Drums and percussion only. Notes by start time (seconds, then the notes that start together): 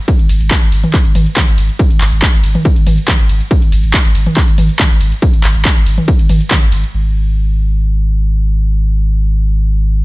0.08 kick, closed hi-hat, ride
0.19 closed hi-hat
0.29 open hi-hat, ride
0.41 closed hi-hat
0.51 kick, clap, closed hi-hat, ride
0.62 closed hi-hat
0.72 open hi-hat, ride
0.83 closed hi-hat, mid tom
0.94 kick, clap, closed hi-hat, ride
1.05 closed hi-hat
1.15 open hi-hat, mid tom, ride
1.26 closed hi-hat
1.36 kick, clap, closed hi-hat, mid tom, ride
1.48 closed hi-hat
1.58 open hi-hat, ride
1.69 closed hi-hat
1.79 kick, closed hi-hat, ride
1.91 closed hi-hat
2.01 clap, open hi-hat, ride
2.12 closed hi-hat
2.22 kick, clap, closed hi-hat, ride
2.33 closed hi-hat
2.44 open hi-hat, ride
2.55 closed hi-hat, mid tom
2.65 kick, closed hi-hat, ride
2.76 closed hi-hat
2.87 open hi-hat, mid tom, ride
2.98 closed hi-hat
3.08 kick, clap, closed hi-hat, mid tom, ride
3.19 closed hi-hat
3.29 open hi-hat, ride
3.41 closed hi-hat
3.51 kick, closed hi-hat, ride
3.62 closed hi-hat
3.72 open hi-hat, ride
3.83 closed hi-hat
3.94 kick, clap, closed hi-hat, ride
4.05 closed hi-hat
4.15 open hi-hat, ride
4.26 closed hi-hat, mid tom
4.37 kick, clap, closed hi-hat, ride
4.48 closed hi-hat
4.58 open hi-hat, mid tom, ride
4.69 closed hi-hat
4.79 kick, clap, closed hi-hat, mid tom, ride
4.91 closed hi-hat
5.01 open hi-hat, ride
5.12 closed hi-hat
5.22 kick, closed hi-hat, ride
5.33 closed hi-hat
5.44 clap, open hi-hat, ride
5.55 closed hi-hat
5.65 kick, clap, closed hi-hat, ride
5.76 closed hi-hat
5.86 open hi-hat, ride
5.98 closed hi-hat, mid tom
6.08 kick, closed hi-hat, ride
6.19 closed hi-hat
6.29 open hi-hat, mid tom, ride
6.41 closed hi-hat
6.51 kick, clap, closed hi-hat, mid tom, ride
6.62 closed hi-hat
6.72 open hi-hat, ride
6.83 closed hi-hat